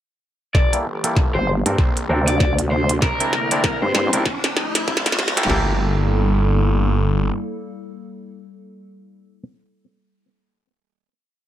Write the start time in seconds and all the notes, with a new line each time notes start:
0.54 G1 E3 A#3 G4 D5, kick, snare, riser
0.73 A#3 E4 G4 A4, closed hi-hat
1.04 G1 A#3 E4 G4 A4, closed hi-hat
1.16 kick, snare
1.35 G1 C5
1.66 G2 C4 D4 A4 A#4, closed hi-hat
1.78 A#1 C3 D4, kick, snare
1.97 closed hi-hat
2.09 D2 C4 D4 A4 A#4
2.27 D5, closed hi-hat
2.40 D5, kick, snare
2.59 closed hi-hat
2.71 C5
2.89 closed hi-hat
3.02 C2 D3 C4 E4 A#4, kick, snare
3.20 C4 D4 E4 A#4, closed hi-hat
3.33 snare
3.51 C2 C4 D4 E4 D5, closed hi-hat
3.64 kick, snare
3.82 G2 C5
3.95 G2 C5, snare
4.13 C2 C4 D4 E4 A#4, closed hi-hat
4.26 F1 F3 A3 G4, kick, snare
4.44 snare, closed hi-hat
4.57 snare
4.75 snare, closed hi-hat
4.88 C2, kick, snare
4.97 snare
5.06 snare, closed hi-hat
5.12 snare
5.19 snare
5.28 snare
5.37 A#3 E4 G4 A4, snare, closed hi-hat
5.43 snare
5.50 G1 G3 A#3 E4 G4 A4, snare, floor tom, crash